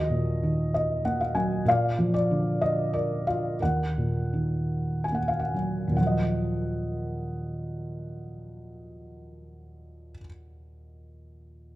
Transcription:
Already playing: D#2 F#4 D#5
0.10 A#2
0.43 D#3
0.74 D#5
1.05 A#3 F#5
1.21 F5
1.35 F#3 G#5
1.65 A#2 D5 F5
1.99 F3
2.14 D5
2.31 D3
2.62 D#5
2.93 A#4 D5
3.27 F4 F5
3.60 D#2 A#4 F#5
3.98 A#2
4.33 D#3
5.04 G#5
5.12 A#3 F#5
5.28 F5
5.39 F#5
5.54 F#3
5.87 D#2 A#2
5.95 F3 F#3 F#5
6.03 A#4 D#5

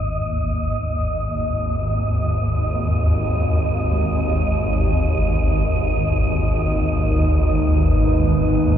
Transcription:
Already playing: G#1 D#2 D#5
1.51 G#2
3.92 G#3
5.65 G#3
6.41 D#4
7.68 B4

